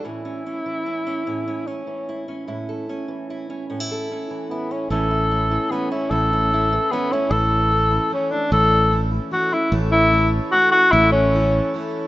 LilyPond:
<<
  \new Staff \with { instrumentName = "Harmonium" } { \time 3/4 \key a \major \tempo 4 = 149 r2. | r2. | r2. | r2. |
r2. | r2. | r2. | r2. |
<e' a' cis'' a''>2.~ | <e' a' cis'' a''>2. | }
  \new Staff \with { instrumentName = "Tenor saxophone" } { \time 3/4 \key a \major e'2.~ | e'4 cis'4. r8 | r2. | r2 b8 cis'8 |
a'2 b8 cis'8 | a'2 b8 cis'8 | a'2 cis'8 d'8 | a'4. r8 fis'8 e'8 |
r8 e'4 r8 fis'8 fis'8 | e'8 cis'2 r8 | }
  \new Staff \with { instrumentName = "Steel-string acoustic guitar" } { \time 3/4 \key a \major << { <e cis'>8 cis'8 cis'4 cis'8 cis'8 | cis'8 cis'8 cis'4 e'8 cis'8 | e'8 a'8 cis'4 e'8 cis'8 | cis'16 e'16 a'8 cis'4 e'8 cis'8 |
<e cis' e'>8 e'8 e'4 cis'8 e'8 | r8 e'8 e'4 cis'8 e'8 | r2. | r2. |
r2. | r2. | } \\ { a,4. e4. | a,4. e4. | a,4. e4. | a,4. e4. |
a,4. e4. | a,4. e4.~ | e2. | r2. |
r2. | r2. | } >> }
  \new Staff \with { instrumentName = "Steel-string acoustic guitar" } { \time 3/4 \key a \major r2. | r2. | r2. | r2. |
<a, e a cis' e'>4 <e a cis' e'>8 <a cis' e'>8 <e a cis' e'>8 <a cis' e'>8 | <a, e a cis' e'>4 <e a cis' e'>4 <e a cis' e'>8 <a cis' e'>8 | <a, e a cis' e'>4 <e a cis' e'>8 <a cis' e'>8 <e a cis' e'>8 <a cis' e'>8 | <a, e a cis' e'>4 <e a cis' e'>8 <a cis' e'>8 <e a cis' e'>8 <a cis' e'>8 |
<a, e a cis' e'>4 <e a cis' e'>4 <e a cis' e'>8 <a cis' e'>8 | <a, e a cis'>4 <e a cis' e'>4 <e a cis' e'>4 | }
  \new Staff \with { instrumentName = "Fingered electric bass" } { \clef bass \time 3/4 \key a \major r2. | r2. | r2. | r2. |
a,,2 r4 | a,,2 r4 | a,,2 r4 | a,,2 r4 |
a,,2 r4 | a,,2 r4 | }
>>